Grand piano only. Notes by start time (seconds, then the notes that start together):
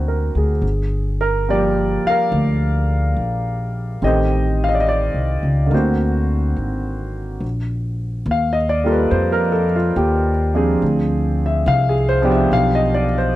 Already playing: D3 A#3 C4 F#4 C5
0.08 A#4
0.37 G#4
1.21 A#4
1.49 F3 G3 A#3 G4 D5
2.07 A#4 F5
4.02 D#3 A3 C4 G4 D#5
4.06 C5
4.64 F5
4.69 D#5
4.75 D5
4.80 D#5
4.89 D5
5.66 D3 A#3
5.73 C4 F#4 C5
5.78 F#4
8.31 F5
8.53 D#5
8.69 D5
8.84 G3 A#3 F4 A4
8.92 B4
9.11 C5
9.32 A#4
9.52 A4
9.76 F4
9.97 G4
10.54 F3 C4 D4 G#4
11.46 E5
11.68 F5
11.89 G#4
12.09 C5
12.22 F3 B3 D4 G4
12.32 E5
12.53 F5
12.75 D#5
12.94 D5
13.18 C5